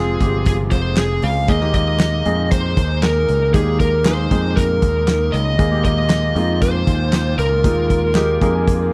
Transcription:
0.00 0.17 F1 medium
0.00 0.16 C3 medium
0.00 1.45 C3 medium
0.00 1.45 F3 medium
0.00 0.20 G#3 medium
0.00 8.93 G#3 medium
0.00 0.20 C4 medium
0.00 0.21 F4 medium
0.00 1.45 F4 medium
0.00 0.46 G#4 medium
0.00 1.49 G#4 medium
0.00 1.50 A#4 medium
0.20 0.68 G1 medium
0.20 1.11 G#3 medium
0.20 1.11 C4 medium
0.20 1.11 F4 medium
0.20 1.11 G4 medium
0.20 kick medium
0.20 closed hi-hat medium
0.46 0.54 G#4 medium
0.46 kick medium
0.46 closed hi-hat medium
0.71 1.19 F1 medium
0.71 0.96 C5 medium
0.71 kick medium
0.71 closed hi-hat medium
0.97 1.24 G#4 medium
0.97 snare loud
0.97 clap medium
0.97 closed hi-hat medium
1.22 1.48 C#2 medium
1.22 1.50 F5 medium
1.22 open hi-hat medium
1.48 2.22 D#2 medium
1.48 2.22 A#2 medium
1.48 8.93 A#2 medium
1.48 8.93 D#3 medium
1.48 1.60 G#3 medium
1.48 1.60 A#3 medium
1.48 1.60 D#4 medium
1.48 5.55 D#4 medium
1.48 1.60 G#4 medium
1.48 1.74 D#5 loud
1.48 kick loud
1.48 closed hi-hat medium
1.61 2.18 G#3 medium
1.61 2.18 A#3 medium
1.61 2.18 D#4 medium
1.61 2.18 G4 medium
1.61 snare soft
1.74 2.51 D#5 medium
1.74 kick medium
1.74 closed hi-hat medium
2.00 snare loud
2.00 clap medium
2.00 closed hi-hat medium
2.25 2.74 F2 medium
2.25 3.16 G#3 medium
2.25 3.16 A#3 medium
2.25 3.16 D#4 medium
2.25 3.16 G#4 medium
2.25 closed hi-hat medium
2.51 3.04 C5 loud
2.51 kick medium
2.51 closed hi-hat medium
2.77 3.25 D#2 medium
2.77 kick medium
2.77 closed hi-hat medium
3.02 3.54 A#4 medium
3.02 snare loud
3.02 clap medium
3.02 closed hi-hat medium
3.28 3.54 C#2 medium
3.28 closed hi-hat medium
3.53 4.27 D#2 loud
3.53 4.27 A#2 medium
3.53 3.99 G#3 medium
3.53 3.99 A#3 medium
3.53 3.99 D#4 medium
3.53 3.99 G4 medium
3.53 3.80 G#4 medium
3.53 kick loud
3.53 closed hi-hat medium
3.80 4.04 A#4 medium
3.80 kick medium
3.80 closed hi-hat medium
4.05 4.28 G#3 medium
4.05 4.28 A#3 medium
4.05 4.28 D#4 medium
4.05 4.28 G#4 medium
4.05 4.58 C5 medium
4.05 snare loud
4.05 clap medium
4.05 closed hi-hat medium
4.31 4.79 F2 medium
4.31 5.22 G#3 medium
4.31 5.22 A#3 medium
4.31 5.22 D#4 medium
4.31 5.22 G#4 medium
4.31 kick medium
4.31 closed hi-hat medium
4.56 5.36 A#4 medium
4.56 kick medium
4.56 closed hi-hat medium
4.82 5.30 D#2 medium
4.82 kick medium
4.82 closed hi-hat medium
5.08 snare loud
5.08 clap medium
5.08 closed hi-hat medium
5.32 5.59 C#2 medium
5.32 5.84 D#5 loud
5.32 closed hi-hat medium
5.58 6.32 D#2 loud
5.58 6.32 A#2 medium
5.58 5.70 G#3 medium
5.58 5.70 A#3 medium
5.58 5.70 D#4 medium
5.58 8.93 F4 medium
5.58 5.71 G#4 medium
5.58 kick loud
5.58 closed hi-hat medium
5.71 6.28 G#3 medium
5.71 6.28 A#3 medium
5.71 6.28 D#4 medium
5.71 6.29 G4 medium
5.85 6.62 D#5 medium
5.85 kick medium
5.85 closed hi-hat medium
6.10 snare loud
6.10 clap medium
6.10 closed hi-hat medium
6.35 6.84 F2 medium
6.35 7.26 G#3 medium
6.35 7.26 A#3 medium
6.35 7.27 D#4 medium
6.35 7.27 F4 medium
6.35 closed hi-hat medium
6.62 7.35 C5 medium
6.62 kick medium
6.62 closed hi-hat medium
6.87 7.35 D#2 medium
6.87 kick medium
6.87 closed hi-hat medium
7.13 snare loud
7.13 clap medium
7.13 closed hi-hat medium
7.38 7.62 C#2 medium
7.38 8.93 A#4 medium
7.38 closed hi-hat medium
7.64 8.37 D#2 medium
7.64 8.37 A#2 medium
7.64 8.10 G#3 medium
7.64 8.10 A#3 medium
7.64 8.10 D#4 medium
7.64 8.10 F4 medium
7.64 kick loud
7.64 closed hi-hat medium
7.90 kick medium
7.90 closed hi-hat medium
8.15 8.38 G#3 medium
8.15 8.39 A#3 medium
8.15 8.39 D#4 medium
8.15 8.39 G4 medium
8.15 snare loud
8.15 clap medium
8.15 closed hi-hat medium
8.41 8.89 F2 medium
8.41 8.93 G#3 medium
8.41 8.93 A#3 medium
8.41 8.93 D#4 medium
8.41 8.93 G#4 medium
8.41 8.53 A#5 medium
8.41 kick medium
8.41 closed hi-hat medium
8.55 8.65 G#5 medium
8.67 8.93 G#5 medium
8.67 kick medium
8.67 closed hi-hat medium

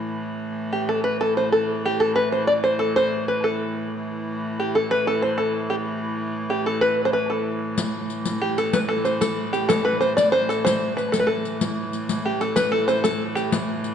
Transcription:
0.08 3.94 A2 medium
0.08 3.94 E3 medium
0.73 0.87 G4 medium
0.89 1.03 A4 medium
1.04 1.19 B4 medium
1.21 1.37 A4 medium
1.37 1.52 C5 medium
1.52 1.82 A4 medium
1.85 2.02 G4 medium
2.00 2.15 A4 medium
2.16 2.31 B4 medium
2.32 2.47 C5 medium
2.47 2.52 D5 loud
2.64 2.79 C5 medium
2.79 2.97 A4 medium
2.96 3.28 C5 loud
3.28 3.44 B4 medium
3.44 3.89 A4 medium
3.94 7.78 A2 medium
3.94 7.78 E3 medium
4.60 4.75 G4 medium
4.75 4.89 A4 medium
4.91 5.05 B4 loud
5.07 5.21 A4 medium
5.22 5.38 C5 medium
5.38 5.67 A4 medium
5.70 5.75 G4 medium
6.50 6.66 G4 medium
6.66 6.83 A4 medium
6.81 7.04 B4 medium
7.05 7.13 C5 medium
7.13 7.30 B4 medium
7.30 7.63 A4 medium
7.78 11.61 A2 medium
7.78 11.61 E3 medium
7.78 riq medium
8.10 riq soft
8.26 riq soft
8.41 8.58 G4 medium
8.58 8.74 A4 medium
8.58 riq soft
8.73 8.78 B4 medium
8.73 riq medium
8.89 9.06 A4 medium
9.05 9.20 C5 medium
9.05 riq soft
9.21 9.51 A4 medium
9.21 riq medium
9.53 9.68 G4 medium
9.53 riq soft
9.69 9.84 A4 loud
9.69 riq medium
9.85 10.00 B4 medium
10.01 10.16 C5 medium
10.01 riq soft
10.17 10.32 D5 loud
10.17 riq soft
10.32 10.48 C5 loud
10.49 10.66 A4 medium
10.49 riq soft
10.65 10.96 C5 loud
10.65 riq medium
10.97 11.12 B4 medium
10.97 riq soft
11.12 11.19 A4 medium
11.12 riq medium
11.20 11.27 B4 medium
11.27 11.59 A4 medium
11.45 riq soft
11.61 13.95 A2 medium
11.61 13.95 E3 medium
11.61 riq medium
11.93 riq soft
12.09 riq medium
12.25 12.42 G4 medium
12.41 12.57 A4 medium
12.41 riq soft
12.56 12.71 B4 medium
12.56 riq medium
12.72 12.89 A4 loud
12.88 13.03 C5 medium
12.88 riq soft
13.04 13.37 A4 medium
13.04 riq medium
13.35 13.51 G4 medium
13.35 riq soft
13.52 riq medium
13.84 riq soft

